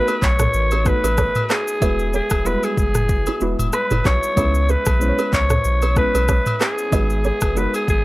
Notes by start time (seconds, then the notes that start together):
Already playing: A3 B3 D#4 F#4 A#4 B4
0.08 G#4 B4, high agogo, shaker
0.22 B1 C#5, kick, clap, shaker
0.39 A4 C#5, cross-stick, mid tom, shaker
0.54 A1, shaker
0.71 G#4 B4, high agogo, shaker
0.85 A3 B3 D#4 F#4 B4, kick, cross-stick, shaker
1.03 A1 G#4 B4, high agogo, shaker
1.17 A4 C#5, kick, cross-stick, shaker
1.35 mid tom, high agogo, shaker
1.50 G#4 B4, cross-stick, clap, shaker
1.68 shaker
1.80 E1 G#3 B3 E4 F#4 B4 E5, kick, high agogo, shaker
1.99 shaker
2.13 G#4 A4 C#5, shaker
2.30 E1, kick, cross-stick, high agogo, shaker
2.44 G3 B3 E4 F#4 G#4 B4, low woodblock, shaker
2.51 G#3
2.63 G#4, high agogo, shaker
2.77 F#1 G#4, kick, shaker
2.94 cross-stick, mid tom, shaker
3.09 kick, shaker
3.26 E4 G#4, high agogo, shaker
3.40 E1 G#3 B3 D#4 E4 F#4 B4, shaker
3.59 E1, mid tom, high agogo, shaker
3.73 B4, cross-stick, low woodblock, shaker
3.90 F#1 E4 G#4, mid tom, high agogo, shaker
4.05 B1 D#4 F#4 C#5, kick, cross-stick, clap, shaker
4.23 shaker
4.36 C#2 G#3 B3 C#4 E4 G#4 B4 C#5, kick, high agogo, shaker
4.55 shaker
4.69 G#4 B4, shaker
4.85 B1, kick, cross-stick, high agogo, shaker
4.99 G#3 B3 C#4 E4 C5, shaker
5.09 C#5
5.18 G#4 B4, high agogo, shaker
5.33 C#2 C#5, kick, clap, shaker
5.50 A4 C#5, cross-stick, mid tom, shaker
5.64 B1, shaker
5.82 G#4 B4, high agogo, shaker
5.95 G#3 B3 C#4 E4 B4, kick, cross-stick, shaker
6.14 B1 G#4 B4, high agogo, shaker
6.28 G#4 C#5, kick, cross-stick, shaker
6.46 mid tom, high agogo, shaker
6.61 G#4 B4, cross-stick, clap, shaker
6.78 shaker
6.91 G#1 G#3 B3 D#4 F#4 B4 D#5, kick, high agogo, shaker
7.10 shaker
7.24 G#4 A4 C#5, shaker
7.41 F#1, kick, cross-stick, high agogo, shaker
7.55 G#3 B3 D#4 F#4 G#4 A#4 B4, shaker
7.64 B4
7.74 G#4, high agogo, shaker
7.88 G#1 G#4, kick, shaker